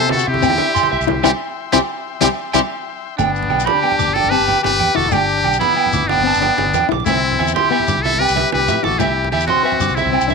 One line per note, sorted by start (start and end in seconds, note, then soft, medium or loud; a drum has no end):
0.00 0.24 C3 loud
0.00 0.23 B3 medium
0.00 0.11 A4 medium
0.00 0.10 C5 loud
0.00 3.15 E5 medium
0.00 3.16 G5 medium
0.00 3.15 C6 medium
0.00 low conga soft
0.09 0.26 A4 medium
0.09 muted conga medium
0.09 high conga loud
0.14 0.28 F#4 medium
0.19 shekere medium
0.26 0.45 C3 loud
0.26 1.21 E4 medium
0.26 1.21 G4 loud
0.26 muted clean electric guitar stroke medium
0.26 low conga soft
0.34 high conga medium
0.34 low conga medium
0.42 0.58 E2 medium
0.42 0.57 C4 medium
0.42 0.55 G5 medium
0.42 low conga soft
0.42 low agogo medium
0.42 shekere medium
0.50 muted conga medium
0.50 low conga soft
0.58 0.88 D4 medium
0.58 0.71 E5 medium
0.58 high conga loud
0.75 0.86 C6 medium
0.75 low conga soft
0.75 low agogo medium
0.75 shekere loud
0.83 high conga medium
0.83 shekere soft
0.92 1.00 C2 medium
0.92 1.03 E5 medium
1.01 1.22 C2 medium
1.01 shekere medium
1.07 1.22 E4 medium
1.07 high conga loud
1.07 low conga loud
1.17 low conga soft
1.23 1.31 C2 loud
1.23 1.30 G3 medium
1.23 1.29 C4 medium
1.23 1.29 E4 medium
1.23 1.30 G4 medium
1.23 1.31 G4 medium
1.23 1.29 E5 medium
1.23 1.29 G5 medium
1.23 1.29 C6 medium
1.23 muted conga loud
1.23 low agogo loud
1.23 shekere loud
1.72 1.80 C2 loud
1.72 1.78 G3 medium
1.72 1.78 C4 loud
1.72 1.78 E4 medium
1.72 1.78 G4 medium
1.72 1.81 G4 medium
1.72 1.78 E5 medium
1.72 1.78 G5 medium
1.72 1.79 C6 medium
1.72 muted conga loud
1.72 low agogo loud
1.72 shekere medium
2.21 2.28 C2 loud
2.21 2.26 G3 medium
2.21 2.26 C4 medium
2.21 2.27 E4 medium
2.21 2.27 G4 loud
2.21 2.29 G4 medium
2.21 2.27 E5 loud
2.21 2.27 G5 medium
2.21 2.27 C6 medium
2.21 muted conga loud
2.21 low agogo medium
2.21 shekere loud
2.54 2.60 C2 medium
2.54 2.59 G3 medium
2.54 2.59 C4 medium
2.54 2.60 E4 medium
2.54 2.60 G4 medium
2.54 2.61 G4 loud
2.54 2.59 E5 medium
2.54 2.59 G5 medium
2.54 2.59 C6 medium
2.54 muted conga medium
2.54 low agogo medium
2.54 shekere loud
3.17 3.48 G1 loud
3.17 3.48 A3 medium
3.17 3.69 B3 medium
3.17 3.67 D4 medium
3.17 3.30 G5 medium
3.17 muted conga medium
3.17 low conga soft
3.17 low agogo medium
3.17 shekere medium
3.27 high conga medium
3.36 shekere soft
3.43 low conga medium
3.50 3.66 B1 medium
3.50 3.62 G5 medium
3.50 high conga medium
3.50 low agogo medium
3.60 shekere medium
3.66 4.17 D4 medium
3.66 4.15 G4 medium
3.66 3.78 B5 medium
3.66 muted conga medium
3.66 low conga medium
3.75 high conga medium
3.83 4.12 B3 medium
3.83 3.94 G5 medium
3.83 low conga soft
3.83 low agogo medium
3.92 low conga medium
3.99 4.07 D2 medium
3.99 4.11 D6 medium
3.99 high conga medium
3.99 shekere medium
4.07 4.22 G1 medium
4.07 low conga soft
4.14 4.33 D4 medium
4.14 4.31 A4 loud
4.14 4.27 G5 medium
4.14 muted conga medium
4.24 4.39 G1 medium
4.24 high conga medium
4.24 low conga medium
4.29 4.46 C4 medium
4.29 4.61 G4 medium
4.29 4.63 B4 loud
4.29 4.43 A5 medium
4.29 low conga soft
4.29 low agogo medium
4.40 4.54 G1 medium
4.48 4.59 G5 medium
4.48 high conga medium
4.48 low conga medium
4.62 4.79 G1 medium
4.62 4.97 G4 medium
4.62 4.98 B4 loud
4.62 muted conga medium
4.62 low agogo medium
4.73 high conga medium
4.80 4.87 E2 medium
4.80 4.91 G5 medium
4.80 low conga medium
4.95 5.11 E1 medium
4.95 5.10 E4 medium
4.95 5.11 F#4 medium
4.95 5.14 A4 medium
4.95 5.07 D6 medium
4.95 high conga medium
4.95 low conga soft
5.05 5.58 D4 medium
5.05 low conga medium
5.11 5.42 G1 loud
5.11 5.41 A3 medium
5.11 5.59 G4 medium
5.11 5.23 G5 medium
5.11 muted conga medium
5.11 low conga soft
5.11 low agogo medium
5.11 shekere medium
5.21 high conga medium
5.29 shekere soft
5.37 low conga medium
5.44 5.60 B1 medium
5.44 5.57 G5 medium
5.44 high conga medium
5.44 low agogo medium
5.53 shekere medium
5.59 6.08 B3 medium
5.59 6.09 E4 medium
5.59 5.72 B5 medium
5.59 muted conga medium
5.59 low conga medium
5.70 high conga medium
5.75 5.89 G5 medium
5.75 muted nylon-string guitar stroke medium
5.75 low conga soft
5.75 low agogo medium
5.86 low conga medium
5.93 6.01 D2 medium
5.93 6.05 D6 medium
5.93 high conga medium
5.93 shekere loud
6.02 6.17 G1 medium
6.02 low conga soft
6.08 6.90 B3 medium
6.08 6.90 D4 loud
6.08 6.22 G5 medium
6.08 muted conga medium
6.18 6.33 G1 medium
6.18 high conga medium
6.18 low conga medium
6.24 6.39 C4 medium
6.24 6.38 A5 medium
6.24 low conga soft
6.24 low agogo medium
6.34 6.50 G1 medium
6.34 shekere medium
6.41 6.70 D4 medium
6.41 6.54 G5 medium
6.41 high conga medium
6.41 low conga medium
6.58 6.73 G1 medium
6.58 muted conga medium
6.58 low agogo medium
6.66 high conga medium
6.74 6.82 E2 medium
6.74 6.86 G5 medium
6.74 low conga loud
6.74 shekere loud
6.89 7.06 B1 medium
6.89 7.04 E4 medium
6.89 7.03 D6 medium
6.89 high conga loud
6.89 low conga soft
7.00 low conga medium
7.06 7.36 C2 loud
7.06 7.35 A3 medium
7.06 7.52 C4 medium
7.06 7.51 E4 medium
7.06 7.19 E5 medium
7.06 muted conga medium
7.06 low conga soft
7.06 low agogo medium
7.06 shekere loud
7.16 high conga medium
7.32 low conga medium
7.39 7.54 E2 medium
7.39 7.51 E5 medium
7.39 high conga medium
7.39 low agogo medium
7.48 shekere medium
7.54 8.05 E4 medium
7.54 8.04 G4 medium
7.54 7.67 C6 medium
7.54 muted conga medium
7.54 low conga medium
7.65 high conga medium
7.71 7.99 B3 medium
7.71 7.83 E5 medium
7.71 low conga soft
7.71 low agogo medium
7.80 low conga medium
7.88 7.95 G2 medium
7.88 7.99 D6 medium
7.88 high conga medium
7.88 shekere loud
7.98 8.11 C2 medium
8.02 8.22 E4 medium
8.02 8.21 A4 loud
8.02 8.16 E5 medium
8.02 muted conga medium
8.13 8.28 C2 medium
8.13 high conga medium
8.13 low conga medium
8.19 8.34 C4 medium
8.19 8.52 G4 medium
8.19 8.52 B4 loud
8.19 8.32 G5 medium
8.19 low conga soft
8.19 low agogo medium
8.29 8.44 C2 medium
8.29 shekere medium
8.36 8.64 G3 medium
8.36 8.48 E5 medium
8.36 high conga medium
8.36 low conga medium
8.52 8.68 C2 medium
8.52 8.85 G4 medium
8.52 8.85 B4 medium
8.52 muted conga medium
8.52 low agogo medium
8.60 high conga medium
8.68 8.77 A2 medium
8.68 8.80 E5 medium
8.68 low conga medium
8.68 shekere loud
8.83 8.99 A1 medium
8.83 8.98 E4 medium
8.83 9.00 F#4 medium
8.83 9.00 A4 medium
8.83 8.96 D6 medium
8.83 high conga medium
8.83 low conga soft
8.91 low conga medium
8.99 9.30 C2 loud
8.99 9.28 A3 medium
8.99 9.31 E4 medium
8.99 9.31 G4 medium
8.99 9.12 E5 medium
8.99 muted conga medium
8.99 low agogo medium
8.99 shekere medium
9.08 high conga medium
9.25 low conga medium
9.31 9.47 E2 medium
9.31 9.47 E4 medium
9.31 9.46 G4 medium
9.31 9.45 E5 medium
9.31 high conga medium
9.31 low agogo medium
9.40 shekere medium
9.47 9.99 C4 medium
9.47 9.97 F#4 medium
9.47 9.61 C6 medium
9.47 muted conga medium
9.47 low conga medium
9.57 high conga medium
9.57 low conga soft
9.63 9.93 B4 medium
9.63 9.77 E5 medium
9.63 low agogo medium
9.72 low conga medium
9.80 9.88 G2 loud
9.80 9.92 D6 medium
9.80 high conga medium
9.80 shekere loud
9.89 10.04 C2 medium
9.89 low conga soft
9.89 shekere soft
9.95 10.34 C4 medium
9.95 10.34 E4 medium
9.95 10.09 E5 medium
9.95 muted conga medium
9.95 shekere soft
10.06 10.20 C2 medium
10.06 high conga medium
10.06 low conga medium
10.12 10.27 C4 medium
10.12 10.25 G5 medium
10.12 low agogo medium
10.21 10.34 C2 medium
10.21 low conga soft
10.21 shekere medium
10.28 10.34 D4 medium
10.28 10.34 E5 medium
10.28 low conga medium
10.28 shekere soft